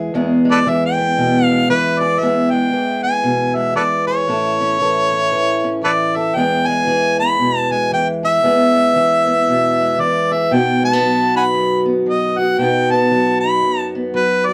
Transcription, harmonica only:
0, 0, Header, 1, 2, 480
1, 0, Start_track
1, 0, Key_signature, 4, "major"
1, 0, Tempo, 518583
1, 127, Time_signature, 4, 2, 24, 8
1, 13452, End_track
2, 0, Start_track
2, 0, Title_t, "Harmonica"
2, 0, Program_c, 0, 22
2, 474, Note_on_c, 0, 69, 72
2, 474, Note_on_c, 0, 71, 72
2, 474, Note_on_c, 0, 74, 103
2, 543, Note_off_c, 0, 71, 0
2, 549, Note_off_c, 0, 69, 0
2, 642, Note_on_c, 0, 76, 92
2, 655, Note_off_c, 0, 74, 0
2, 778, Note_off_c, 0, 76, 0
2, 794, Note_on_c, 0, 79, 96
2, 1340, Note_off_c, 0, 79, 0
2, 1340, Note_on_c, 0, 77, 96
2, 1552, Note_off_c, 0, 77, 0
2, 1574, Note_on_c, 0, 71, 91
2, 1855, Note_on_c, 0, 74, 85
2, 1868, Note_off_c, 0, 71, 0
2, 2028, Note_on_c, 0, 76, 81
2, 2042, Note_off_c, 0, 74, 0
2, 2324, Note_on_c, 0, 79, 87
2, 2338, Note_off_c, 0, 76, 0
2, 2801, Note_off_c, 0, 79, 0
2, 2807, Note_on_c, 0, 80, 88
2, 3289, Note_on_c, 0, 76, 82
2, 3303, Note_off_c, 0, 80, 0
2, 3474, Note_off_c, 0, 76, 0
2, 3480, Note_on_c, 0, 69, 57
2, 3480, Note_on_c, 0, 71, 57
2, 3480, Note_on_c, 0, 74, 81
2, 3537, Note_off_c, 0, 71, 0
2, 3540, Note_off_c, 0, 69, 0
2, 3748, Note_off_c, 0, 74, 0
2, 3770, Note_on_c, 0, 73, 93
2, 5364, Note_off_c, 0, 73, 0
2, 5407, Note_on_c, 0, 69, 64
2, 5407, Note_on_c, 0, 71, 64
2, 5407, Note_on_c, 0, 74, 91
2, 5466, Note_off_c, 0, 69, 0
2, 5470, Note_off_c, 0, 71, 0
2, 5703, Note_on_c, 0, 76, 91
2, 5717, Note_off_c, 0, 74, 0
2, 5886, Note_on_c, 0, 79, 108
2, 5899, Note_off_c, 0, 76, 0
2, 6174, Note_on_c, 0, 80, 102
2, 6188, Note_off_c, 0, 79, 0
2, 6653, Note_off_c, 0, 80, 0
2, 6662, Note_on_c, 0, 83, 112
2, 7014, Note_off_c, 0, 83, 0
2, 7014, Note_on_c, 0, 81, 112
2, 7143, Note_on_c, 0, 80, 97
2, 7157, Note_off_c, 0, 81, 0
2, 7328, Note_off_c, 0, 80, 0
2, 7349, Note_on_c, 0, 79, 88
2, 7474, Note_off_c, 0, 79, 0
2, 7633, Note_on_c, 0, 76, 113
2, 9258, Note_on_c, 0, 74, 83
2, 9272, Note_off_c, 0, 76, 0
2, 9563, Note_on_c, 0, 76, 76
2, 9577, Note_off_c, 0, 74, 0
2, 9754, Note_on_c, 0, 79, 90
2, 9768, Note_off_c, 0, 76, 0
2, 10030, Note_off_c, 0, 79, 0
2, 10039, Note_on_c, 0, 81, 92
2, 10475, Note_off_c, 0, 81, 0
2, 10518, Note_on_c, 0, 78, 59
2, 10518, Note_on_c, 0, 80, 59
2, 10518, Note_on_c, 0, 83, 85
2, 10577, Note_off_c, 0, 80, 0
2, 10593, Note_off_c, 0, 78, 0
2, 10954, Note_off_c, 0, 83, 0
2, 11189, Note_on_c, 0, 75, 71
2, 11466, Note_on_c, 0, 78, 78
2, 11480, Note_off_c, 0, 75, 0
2, 11651, Note_on_c, 0, 79, 86
2, 11665, Note_off_c, 0, 78, 0
2, 11949, Note_on_c, 0, 81, 100
2, 11963, Note_off_c, 0, 79, 0
2, 12402, Note_off_c, 0, 81, 0
2, 12407, Note_on_c, 0, 83, 94
2, 12857, Note_off_c, 0, 83, 0
2, 13110, Note_on_c, 0, 71, 85
2, 13386, Note_on_c, 0, 74, 93
2, 13400, Note_off_c, 0, 71, 0
2, 13452, Note_off_c, 0, 74, 0
2, 13452, End_track
0, 0, End_of_file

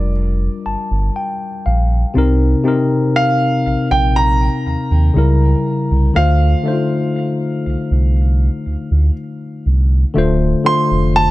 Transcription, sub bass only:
0, 0, Header, 1, 2, 480
1, 0, Start_track
1, 0, Tempo, 1000000
1, 1035, Time_signature, 4, 2, 24, 8
1, 5428, End_track
2, 0, Start_track
2, 0, Title_t, "Sub bass"
2, 0, Program_c, 0, 38
2, 0, Note_on_c, 0, 29, 89
2, 234, Note_off_c, 0, 29, 0
2, 316, Note_on_c, 0, 31, 51
2, 364, Note_off_c, 0, 31, 0
2, 436, Note_on_c, 0, 31, 93
2, 528, Note_off_c, 0, 31, 0
2, 796, Note_on_c, 0, 34, 89
2, 982, Note_off_c, 0, 34, 0
2, 1036, Note_on_c, 0, 36, 108
2, 1221, Note_off_c, 0, 36, 0
2, 1756, Note_on_c, 0, 34, 48
2, 1804, Note_off_c, 0, 34, 0
2, 1876, Note_on_c, 0, 34, 84
2, 2155, Note_off_c, 0, 34, 0
2, 2236, Note_on_c, 0, 39, 51
2, 2284, Note_off_c, 0, 39, 0
2, 2355, Note_on_c, 0, 39, 92
2, 2448, Note_off_c, 0, 39, 0
2, 2476, Note_on_c, 0, 37, 108
2, 2661, Note_off_c, 0, 37, 0
2, 2836, Note_on_c, 0, 36, 92
2, 2929, Note_off_c, 0, 36, 0
2, 2956, Note_on_c, 0, 38, 108
2, 3141, Note_off_c, 0, 38, 0
2, 3676, Note_on_c, 0, 36, 48
2, 3724, Note_off_c, 0, 36, 0
2, 3796, Note_on_c, 0, 36, 85
2, 4075, Note_off_c, 0, 36, 0
2, 4156, Note_on_c, 0, 38, 51
2, 4204, Note_off_c, 0, 38, 0
2, 4276, Note_on_c, 0, 38, 88
2, 4369, Note_off_c, 0, 38, 0
2, 4636, Note_on_c, 0, 36, 91
2, 4822, Note_off_c, 0, 36, 0
2, 4877, Note_on_c, 0, 26, 108
2, 5062, Note_off_c, 0, 26, 0
2, 5236, Note_on_c, 0, 29, 87
2, 5428, Note_off_c, 0, 29, 0
2, 5428, End_track
0, 0, End_of_file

